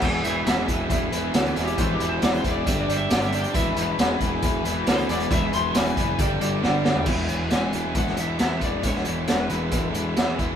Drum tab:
CC |x---------------|----------------|----------------|----------------|
HH |--x-x-x-x-x-xxxx|x-x-xxx-x-x-xxxx|x-x-x-x-x-x-xxxx|x-x-xxx-x-x-----|
SD |----o-------o-o-|----o-------o---|----o-------o-o-|----o-------o-o-|
FT |----------------|----------------|----------------|---------------o|
BD |o-----o-o-------|o-----o-o-------|o-----o-o-------|o-----o-o-------|

CC |x---------------|----------------|
HH |--x-x-x-x-x-x-x-|x-x-x-x-x-x-x-x-|
SD |----o----o--o---|-o--o-------o---|
FT |----------------|----------------|
BD |o-------o-----o-|o-------o-----o-|